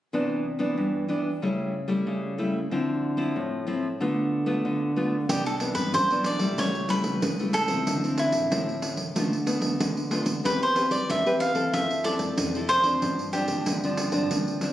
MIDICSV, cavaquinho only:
0, 0, Header, 1, 2, 480
1, 0, Start_track
1, 0, Key_signature, 0, "major"
1, 0, Tempo, 644468
1, 96, Time_signature, 4, 2, 24, 8
1, 10968, End_track
2, 0, Start_track
2, 0, Title_t, "Cavaquinho"
2, 0, Program_c, 0, 24
2, 3944, Note_on_c, 0, 67, 77
2, 4066, Note_off_c, 0, 67, 0
2, 4069, Note_on_c, 0, 69, 76
2, 4133, Note_off_c, 0, 69, 0
2, 4281, Note_on_c, 0, 71, 72
2, 4417, Note_off_c, 0, 71, 0
2, 4426, Note_on_c, 0, 72, 85
2, 4663, Note_on_c, 0, 74, 80
2, 4672, Note_off_c, 0, 72, 0
2, 4908, Note_on_c, 0, 73, 83
2, 4911, Note_off_c, 0, 74, 0
2, 5129, Note_off_c, 0, 73, 0
2, 5140, Note_on_c, 0, 71, 86
2, 5612, Note_off_c, 0, 71, 0
2, 5615, Note_on_c, 0, 69, 84
2, 6069, Note_off_c, 0, 69, 0
2, 6101, Note_on_c, 0, 64, 69
2, 7511, Note_off_c, 0, 64, 0
2, 7788, Note_on_c, 0, 71, 86
2, 7896, Note_off_c, 0, 71, 0
2, 7916, Note_on_c, 0, 72, 80
2, 8130, Note_on_c, 0, 74, 80
2, 8155, Note_off_c, 0, 72, 0
2, 8259, Note_off_c, 0, 74, 0
2, 8269, Note_on_c, 0, 76, 85
2, 8488, Note_off_c, 0, 76, 0
2, 8493, Note_on_c, 0, 77, 90
2, 8738, Note_off_c, 0, 77, 0
2, 8741, Note_on_c, 0, 76, 87
2, 8964, Note_off_c, 0, 76, 0
2, 8972, Note_on_c, 0, 74, 85
2, 9426, Note_off_c, 0, 74, 0
2, 9450, Note_on_c, 0, 72, 82
2, 9927, Note_on_c, 0, 67, 70
2, 9949, Note_off_c, 0, 72, 0
2, 10968, Note_off_c, 0, 67, 0
2, 10968, End_track
0, 0, End_of_file